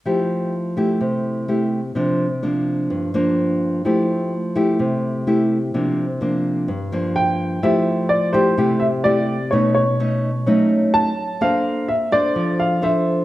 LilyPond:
<<
  \new Staff \with { instrumentName = "Grand piano" } { \time 4/4 \key f \major \tempo 4 = 127 r1 | r1 | r1 | r2. g''4 |
e''4 d''8 c''4 e''8 d''4 | cis''8 cis''2 r8 a''4 | f''4 e''8 d''4 f''8 e''4 | }
  \new Staff \with { instrumentName = "Nylon-string guitar" } { \time 4/4 \key f \major << { <a e' g'>4 r8 <a e' g'>4. <a e' g'>8 r8 | <f bes d'>8 r8 <f bes d'>4. <f bes d'>4. | <a e' g'>4 r8 <a e' g'>4. <a e' g'>8 r8 | <f bes d'>8 r8 <f bes d'>4 r8 <f bes d'>4. |
<a e' g'>4 r8 <a e' g'>8 <a e' g'>8 r8 <a e' g'>8 r8 | <a cis' dis'>8 r8 <a cis' dis'>8 r8 <a cis' dis'>4. r8 | <d' a' c''>4 r8 <d' a' c''>4. <d' a' c''>4 | } \\ { f2 c2 | c2 g,2 | f2 c2 | c2 g,2 |
f2 c2 | b,2 fis2 | bes2 f2 | } >> }
>>